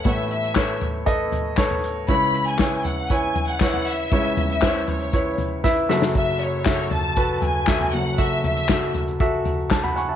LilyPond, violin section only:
\new Staff \with { instrumentName = "Violin section" } { \time 4/4 \key fis \dorian \tempo 4 = 118 e''8 e''4 r2 r8 | b''8. gis''8. fis''8 gis''8. fis''8. e''8~ | e''8. e''8. cis''4 r4. | e''8 cis''8 cis''8 a''4 gis''4 fis''8 |
e''8 e''4 r2 r8 | }